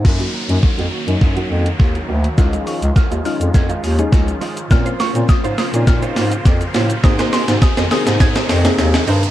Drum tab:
CC |x---------------|----------------|----------------|----------------|
HH |-x-x-x-x-x-x-x-x|-xox-xox-xox-xox|-xox-xox-xox-xox|-xox-xox-xox-xox|
SH |----------------|xxxxxxxxxxxxxxxx|xxxxxxxxxxxxxxxx|xxxxxxxxxxxxxxxx|
SD |o---o---o---o---|o---o---o---o---|o-o-o-o-o-o-o-o-|oooooooooooooo--|
BD |o---o---o---o---|o---o---o---o---|o---o---o---o---|o---o---o-------|